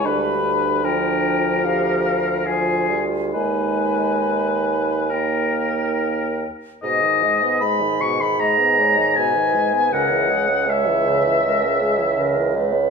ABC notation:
X:1
M:4/4
L:1/16
Q:1/4=76
K:G#m
V:1 name="Flute"
b4 =g4 =f2 f2 _a2 z2 | g8 =g6 z2 | G16- | G16 |]
V:2 name="Oboe"
B4 A8 _A2 z2 | B8 A6 z2 | d4 b2 c' b a4 g4 | f4 e8- e2 z2 |]
V:3 name="Clarinet"
=D4 D4 =G2 z2 =F4 | D8 D6 z2 | z8 d2 c2 B4 | A2 G2 c2 B2 A2 G2 A2 B2 |]
V:4 name="French horn" clef=bass
=G,4 =F,8 F,2 G,2 | G,6- G, z A,6 z2 | B,, D, G, B, G, D, B,, D, G, B, G, D, B,, D, G, B, | C, E, G, C G, E, C, E, G, C G, E, C, E, G, C |]
V:5 name="Bassoon" clef=bass
=D,,16 | D,,12- D,,2 z2 | G,,16 | C,,16 |]